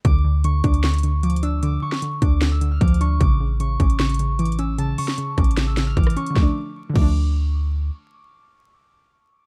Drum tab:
CC |------------------------------------------------------------------------------------------------|------------------------------------------------------------------------------------------------|------------------------------------------------------------------------------------------------|------------------------------------------------------------------------------------------------|
HH |x-----------------------x-----------x-----x-----x--x--x--x--x-----------x---x---x---x-----------|x-----------------------x-----------x-----------x-----------x-----------x---x---x---x-----------|x-----------------------x-----------x-----x-----x--x--x--x--x-----------x---x---x---x-----------|x-----------o-----------x-----------x---x---x---x-----------x-----------x---x---x---x-----x-----|
SD |------------------------------------------------o-----------------------------------------------|------------------o-----------------------------o-----------------------------------------------|------------------------------------------------o-----------------------------------------------|------------------o-----------------r-----------o-----------o-----------------r-----------------|
BD |o-----------------------------------o-----------------------------------------------------------|------------------------------------o-----------------------------------o-----------------------|o-----------------------------------o-----------------------------------------------------------|------------------------------------o-----------------------------------o-----------------------|

CC |------------------------------------x-----------------------------------------------------------|------------------------------------------------------------------------------------------------|
HH |------------------------------------------------------------------------------------------------|------------------------------------------------------------------------------------------------|
SD |o-----------------------------------------------------------------------------------------------|------------------------------------------------------------------------------------------------|
BD |o-----------------------------------o-----------------------------------------------------------|------------------------------------------------------------------------------------------------|